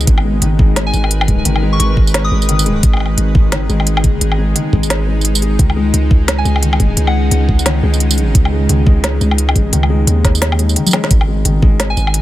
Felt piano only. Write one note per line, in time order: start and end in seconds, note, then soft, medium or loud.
0.25 0.41 G#3 medium
0.42 0.58 D#3 medium
0.59 0.76 G#3 loud
1.28 1.45 G#3 medium
1.45 1.61 D#3 medium
1.63 1.79 G#3 loud
2.32 2.48 G#3 medium
2.49 2.65 D#3 medium
2.66 2.83 G#3 loud
3.35 3.51 G#3 medium
3.52 3.68 D#3 medium
3.69 3.86 G#3 loud
4.38 4.55 G#3 medium
4.56 4.71 D#3 medium
4.73 4.89 G#3 loud
5.07 5.24 G#3 medium
5.42 5.58 G#4 medium
5.59 5.75 D#3 medium
5.76 5.93 G#3 loud
6.45 6.62 G#3 medium
6.63 6.78 D#3 medium
6.80 6.96 G#3 loud
7.49 7.65 G#3 medium
7.66 7.82 D#3 medium
7.83 8.00 G#3 loud
8.52 8.69 G#3 medium
8.69 8.85 D#3 medium
8.87 9.03 G#3 loud
9.56 9.72 G#3 medium
9.73 9.89 D#3 medium
9.90 10.07 G#3 loud
10.59 10.76 G#3 medium
10.76 10.92 D#3 medium
10.94 11.10 G#3 loud
11.28 11.45 G#3 medium
11.45 11.61 D#3 medium
11.62 11.79 G#3 loud